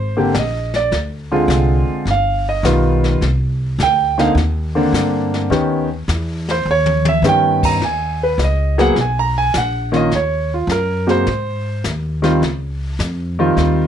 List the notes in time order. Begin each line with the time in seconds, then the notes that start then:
Already playing: G#1 C5
0.17 D3 A#3 C4 G4
0.35 A#1, snare, hi-hat pedal
0.39 D#5
0.74 D5, snare
0.92 D2, brush sweep, snare
1.32 D3 G#3 C4 F4
1.48 C2, snare, hi-hat pedal
1.89 muted upright bass stroke
2.05 G1, brush sweep, snare
2.11 F5
2.49 D#5
2.63 B1 D#3 G3 B3 F4, snare, hi-hat pedal
3.04 snare
3.21 C2, brush sweep, snare
3.79 D2, snare, hi-hat pedal
3.83 G5
4.18 D3 A#3 C4 D#4 F5, snare
4.35 D#2, brush sweep, snare
4.75 D3 A#3 C4 D4
4.93 G2, snare, hi-hat pedal
5.34 snare
5.50 D#2 D#3 B3 C#4 G4, brush sweep, snare
6.08 E2, snare, hi-hat pedal
6.49 C5, snare
6.65 D#2
6.71 C#5
6.86 high tom
7.05 E5, high tom
7.22 G2 D#3 B3 C#4 G4, snare, hi-hat pedal
7.29 G5
7.63 A#5, kick, crash
7.80 D#2, brush sweep, snare
7.85 G#5
8.23 B4
8.38 C#2, snare, hi-hat pedal
8.44 D#5
8.78 F#3 A#3 B3 G#4 F#5, snare
8.96 B1, brush sweep, snare
9.01 G#5
9.19 A#5
9.38 G#5
9.54 A#1 F#5, snare, hi-hat pedal
9.92 D#3 A#3 C#4 F4, snare
9.96 D#5
10.11 D#2 C#5, brush sweep, snare
10.54 F4
10.67 F#2, snare, hi-hat pedal
10.72 A#4
11.07 C3 G#3 A#3 F#4 C5, snare
11.27 G#2, brush sweep, snare
11.84 D#2, snare, hi-hat pedal
12.22 D#3 G3 C4 F4, snare
12.42 C#2, brush sweep, snare
12.99 F2, snare, hi-hat pedal
13.39 D#3 G3 C4 F4
13.57 D#2, brush sweep, snare